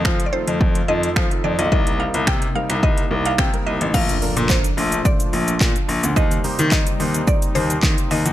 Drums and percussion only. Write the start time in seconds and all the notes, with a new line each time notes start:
0.05 finger snap, kick
0.20 closed hi-hat
0.47 closed hi-hat
0.61 kick
0.75 closed hi-hat
1.03 closed hi-hat
1.16 finger snap, kick
1.31 closed hi-hat
1.59 closed hi-hat
1.72 kick
1.87 closed hi-hat
2.14 closed hi-hat
2.27 finger snap, kick
2.42 closed hi-hat
2.70 finger snap, closed hi-hat
2.83 kick
2.98 closed hi-hat
3.25 closed hi-hat
3.38 finger snap, kick
3.54 closed hi-hat
3.81 closed hi-hat
3.94 kick, crash, shaker
4.09 closed hi-hat, shaker
4.22 open hi-hat, shaker
4.37 closed hi-hat, shaker
4.50 kick, clap, shaker
4.64 closed hi-hat, shaker
4.78 open hi-hat, shaker
4.92 closed hi-hat, shaker
5.05 kick, shaker
5.20 closed hi-hat, shaker
5.33 open hi-hat, shaker
5.48 closed hi-hat, shaker
5.61 kick, clap, shaker
5.76 closed hi-hat, shaker
5.89 open hi-hat, shaker
6.03 closed hi-hat, shaker
6.16 kick, shaker
6.31 closed hi-hat, shaker
6.44 open hi-hat, shaker
6.59 closed hi-hat, shaker
6.72 kick, clap, shaker
6.87 closed hi-hat, shaker
7.00 open hi-hat, shaker
7.14 closed hi-hat, shaker
7.27 kick, shaker
7.42 closed hi-hat, shaker
7.55 open hi-hat, shaker
7.70 closed hi-hat, shaker
7.83 kick, clap, shaker
7.98 closed hi-hat, shaker
8.11 open hi-hat, shaker
8.26 closed hi-hat, shaker